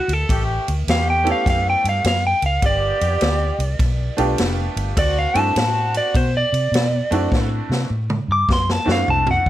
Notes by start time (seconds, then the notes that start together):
Already playing: F#4
0.08 D2, ride
0.13 A4
0.28 A1 A3 C#4 G4, kick, ride
0.68 D2, ride
0.87 E2 A3 C#4 G4 F5, snare, ride
1.10 G5
1.24 A3 B3 C#4 E4 G4, ride
1.32 F5
1.46 F#2 F5, kick, snare, ride
1.70 G5
1.84 G2, ride
1.89 F5
2.04 F#2 F5, snare, ride
2.27 G5
2.42 C#2 F5, ride
2.62 G1 B3 F4 G4 D5, kick, ride
3.01 F2, ride
3.21 D2, snare, ride
3.59 C2, ride
3.79 B1, kick, snare, ride
4.17 B1 A3 B3 D4 F4 G4, ride
4.38 F1, snare, ride
4.76 G1, ride
4.96 D2 C4 D4 F#4 D5, kick, ride
5.19 F5
5.34 G2 A3 C4 D4 E4 F#4, ride
5.39 A5
5.56 A2 C4 D4 F#4, snare, ride
5.94 D5, ride
6.15 B2 C5, kick, ride
6.37 D5
6.53 C3, ride
6.72 B2, snare, ride
7.11 F#2 A3 C4 D4 E4 F#4, ride
7.32 A2, kick, snare
7.70 C3, snare
7.90 A2
8.10 mid tom
8.28 G2 D6
8.49 F#2, kick, snare
8.53 C6
8.70 A5, snare
8.85 F#2 A3 C4 D4 E4 F#4
8.89 F5, snare
9.08 C2 A5, floor tom
9.27 floor tom
9.31 F#5
9.46 D2, kick